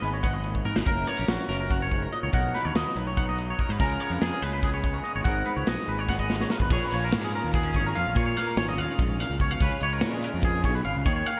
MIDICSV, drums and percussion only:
0, 0, Header, 1, 2, 480
1, 0, Start_track
1, 0, Tempo, 415800
1, 1009, Time_signature, 7, 3, 24, 8
1, 13159, End_track
2, 0, Start_track
2, 0, Title_t, "Drums"
2, 43, Note_on_c, 9, 42, 54
2, 158, Note_off_c, 9, 42, 0
2, 268, Note_on_c, 9, 42, 74
2, 271, Note_on_c, 9, 38, 31
2, 274, Note_on_c, 9, 36, 93
2, 383, Note_off_c, 9, 42, 0
2, 387, Note_off_c, 9, 38, 0
2, 389, Note_off_c, 9, 36, 0
2, 506, Note_on_c, 9, 42, 57
2, 622, Note_off_c, 9, 42, 0
2, 634, Note_on_c, 9, 36, 52
2, 750, Note_off_c, 9, 36, 0
2, 752, Note_on_c, 9, 45, 53
2, 867, Note_off_c, 9, 45, 0
2, 878, Note_on_c, 9, 38, 84
2, 993, Note_off_c, 9, 38, 0
2, 996, Note_on_c, 9, 42, 66
2, 998, Note_on_c, 9, 36, 94
2, 1112, Note_off_c, 9, 42, 0
2, 1113, Note_off_c, 9, 36, 0
2, 1231, Note_on_c, 9, 42, 53
2, 1234, Note_on_c, 9, 38, 28
2, 1346, Note_off_c, 9, 42, 0
2, 1350, Note_off_c, 9, 38, 0
2, 1479, Note_on_c, 9, 42, 73
2, 1482, Note_on_c, 9, 38, 101
2, 1594, Note_off_c, 9, 42, 0
2, 1597, Note_off_c, 9, 38, 0
2, 1729, Note_on_c, 9, 42, 48
2, 1732, Note_on_c, 9, 38, 28
2, 1844, Note_off_c, 9, 42, 0
2, 1848, Note_off_c, 9, 38, 0
2, 1965, Note_on_c, 9, 42, 69
2, 1969, Note_on_c, 9, 36, 92
2, 2081, Note_off_c, 9, 42, 0
2, 2084, Note_off_c, 9, 36, 0
2, 2210, Note_on_c, 9, 36, 64
2, 2212, Note_on_c, 9, 42, 49
2, 2326, Note_off_c, 9, 36, 0
2, 2327, Note_off_c, 9, 42, 0
2, 2457, Note_on_c, 9, 42, 53
2, 2572, Note_off_c, 9, 42, 0
2, 2691, Note_on_c, 9, 42, 69
2, 2694, Note_on_c, 9, 36, 99
2, 2806, Note_off_c, 9, 42, 0
2, 2810, Note_off_c, 9, 36, 0
2, 2946, Note_on_c, 9, 42, 48
2, 2949, Note_on_c, 9, 38, 29
2, 3061, Note_off_c, 9, 42, 0
2, 3065, Note_off_c, 9, 38, 0
2, 3179, Note_on_c, 9, 42, 77
2, 3183, Note_on_c, 9, 38, 96
2, 3295, Note_off_c, 9, 42, 0
2, 3298, Note_off_c, 9, 38, 0
2, 3424, Note_on_c, 9, 42, 55
2, 3539, Note_off_c, 9, 42, 0
2, 3662, Note_on_c, 9, 36, 92
2, 3667, Note_on_c, 9, 42, 73
2, 3778, Note_off_c, 9, 36, 0
2, 3782, Note_off_c, 9, 42, 0
2, 3906, Note_on_c, 9, 42, 55
2, 4021, Note_off_c, 9, 42, 0
2, 4144, Note_on_c, 9, 36, 70
2, 4151, Note_on_c, 9, 42, 58
2, 4259, Note_off_c, 9, 36, 0
2, 4266, Note_off_c, 9, 42, 0
2, 4385, Note_on_c, 9, 36, 96
2, 4390, Note_on_c, 9, 42, 74
2, 4500, Note_off_c, 9, 36, 0
2, 4505, Note_off_c, 9, 42, 0
2, 4628, Note_on_c, 9, 42, 50
2, 4743, Note_off_c, 9, 42, 0
2, 4864, Note_on_c, 9, 42, 80
2, 4868, Note_on_c, 9, 38, 96
2, 4980, Note_off_c, 9, 42, 0
2, 4983, Note_off_c, 9, 38, 0
2, 5110, Note_on_c, 9, 42, 53
2, 5226, Note_off_c, 9, 42, 0
2, 5343, Note_on_c, 9, 36, 88
2, 5344, Note_on_c, 9, 42, 65
2, 5348, Note_on_c, 9, 38, 29
2, 5459, Note_off_c, 9, 36, 0
2, 5460, Note_off_c, 9, 42, 0
2, 5463, Note_off_c, 9, 38, 0
2, 5584, Note_on_c, 9, 42, 55
2, 5585, Note_on_c, 9, 36, 67
2, 5700, Note_off_c, 9, 36, 0
2, 5700, Note_off_c, 9, 42, 0
2, 5830, Note_on_c, 9, 42, 57
2, 5946, Note_off_c, 9, 42, 0
2, 6060, Note_on_c, 9, 42, 71
2, 6063, Note_on_c, 9, 36, 102
2, 6175, Note_off_c, 9, 42, 0
2, 6179, Note_off_c, 9, 36, 0
2, 6300, Note_on_c, 9, 42, 51
2, 6416, Note_off_c, 9, 42, 0
2, 6544, Note_on_c, 9, 42, 69
2, 6548, Note_on_c, 9, 38, 103
2, 6660, Note_off_c, 9, 42, 0
2, 6663, Note_off_c, 9, 38, 0
2, 6783, Note_on_c, 9, 42, 46
2, 6898, Note_off_c, 9, 42, 0
2, 7026, Note_on_c, 9, 36, 94
2, 7039, Note_on_c, 9, 38, 47
2, 7141, Note_off_c, 9, 36, 0
2, 7147, Note_on_c, 9, 36, 53
2, 7154, Note_off_c, 9, 38, 0
2, 7263, Note_off_c, 9, 36, 0
2, 7271, Note_on_c, 9, 38, 68
2, 7386, Note_off_c, 9, 38, 0
2, 7395, Note_on_c, 9, 38, 59
2, 7504, Note_off_c, 9, 38, 0
2, 7504, Note_on_c, 9, 38, 73
2, 7618, Note_on_c, 9, 36, 77
2, 7620, Note_off_c, 9, 38, 0
2, 7734, Note_off_c, 9, 36, 0
2, 7737, Note_on_c, 9, 49, 103
2, 7739, Note_on_c, 9, 36, 111
2, 7853, Note_off_c, 9, 49, 0
2, 7855, Note_off_c, 9, 36, 0
2, 7978, Note_on_c, 9, 42, 64
2, 8093, Note_off_c, 9, 42, 0
2, 8221, Note_on_c, 9, 42, 95
2, 8225, Note_on_c, 9, 38, 107
2, 8337, Note_off_c, 9, 42, 0
2, 8340, Note_off_c, 9, 38, 0
2, 8461, Note_on_c, 9, 42, 66
2, 8577, Note_off_c, 9, 42, 0
2, 8699, Note_on_c, 9, 42, 85
2, 8702, Note_on_c, 9, 38, 33
2, 8703, Note_on_c, 9, 36, 104
2, 8814, Note_off_c, 9, 42, 0
2, 8818, Note_off_c, 9, 36, 0
2, 8818, Note_off_c, 9, 38, 0
2, 8931, Note_on_c, 9, 42, 67
2, 8940, Note_on_c, 9, 36, 72
2, 9046, Note_off_c, 9, 42, 0
2, 9055, Note_off_c, 9, 36, 0
2, 9183, Note_on_c, 9, 42, 63
2, 9298, Note_off_c, 9, 42, 0
2, 9416, Note_on_c, 9, 42, 80
2, 9422, Note_on_c, 9, 36, 104
2, 9531, Note_off_c, 9, 42, 0
2, 9537, Note_off_c, 9, 36, 0
2, 9671, Note_on_c, 9, 42, 65
2, 9674, Note_on_c, 9, 38, 35
2, 9786, Note_off_c, 9, 42, 0
2, 9789, Note_off_c, 9, 38, 0
2, 9894, Note_on_c, 9, 42, 84
2, 9897, Note_on_c, 9, 38, 110
2, 10009, Note_off_c, 9, 42, 0
2, 10013, Note_off_c, 9, 38, 0
2, 10147, Note_on_c, 9, 42, 62
2, 10262, Note_off_c, 9, 42, 0
2, 10377, Note_on_c, 9, 36, 102
2, 10378, Note_on_c, 9, 42, 90
2, 10493, Note_off_c, 9, 36, 0
2, 10494, Note_off_c, 9, 42, 0
2, 10616, Note_on_c, 9, 42, 67
2, 10620, Note_on_c, 9, 38, 36
2, 10732, Note_off_c, 9, 42, 0
2, 10735, Note_off_c, 9, 38, 0
2, 10851, Note_on_c, 9, 36, 77
2, 10853, Note_on_c, 9, 42, 65
2, 10966, Note_off_c, 9, 36, 0
2, 10968, Note_off_c, 9, 42, 0
2, 11085, Note_on_c, 9, 42, 83
2, 11089, Note_on_c, 9, 36, 109
2, 11200, Note_off_c, 9, 42, 0
2, 11204, Note_off_c, 9, 36, 0
2, 11322, Note_on_c, 9, 42, 65
2, 11437, Note_off_c, 9, 42, 0
2, 11554, Note_on_c, 9, 42, 97
2, 11558, Note_on_c, 9, 38, 112
2, 11669, Note_off_c, 9, 42, 0
2, 11673, Note_off_c, 9, 38, 0
2, 11805, Note_on_c, 9, 42, 70
2, 11921, Note_off_c, 9, 42, 0
2, 12025, Note_on_c, 9, 42, 96
2, 12028, Note_on_c, 9, 38, 33
2, 12040, Note_on_c, 9, 36, 100
2, 12140, Note_off_c, 9, 42, 0
2, 12144, Note_off_c, 9, 38, 0
2, 12155, Note_off_c, 9, 36, 0
2, 12282, Note_on_c, 9, 36, 72
2, 12283, Note_on_c, 9, 42, 68
2, 12397, Note_off_c, 9, 36, 0
2, 12398, Note_off_c, 9, 42, 0
2, 12522, Note_on_c, 9, 42, 69
2, 12637, Note_off_c, 9, 42, 0
2, 12763, Note_on_c, 9, 42, 96
2, 12765, Note_on_c, 9, 36, 101
2, 12879, Note_off_c, 9, 42, 0
2, 12880, Note_off_c, 9, 36, 0
2, 13002, Note_on_c, 9, 42, 67
2, 13117, Note_off_c, 9, 42, 0
2, 13159, End_track
0, 0, End_of_file